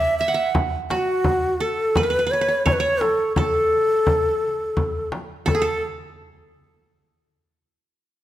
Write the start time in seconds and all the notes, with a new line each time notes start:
Already playing: D5 E5
0.19 E5
0.28 F#5
0.34 E5
0.55 frame drum
0.90 F#4, frame drum
1.24 frame drum
1.60 A4
1.95 B4, frame drum
2.03 B4
2.10 B4
2.19 B4
2.27 B4
2.31 B4 C#5
2.41 B4
2.48 B4
2.66 C#5, frame drum
2.73 B4
2.80 C#5
3.01 A4, frame drum
3.36 A4, frame drum
4.07 frame drum
4.77 frame drum
5.12 frame drum
5.46 A4, frame drum
5.55 G#4
5.62 A4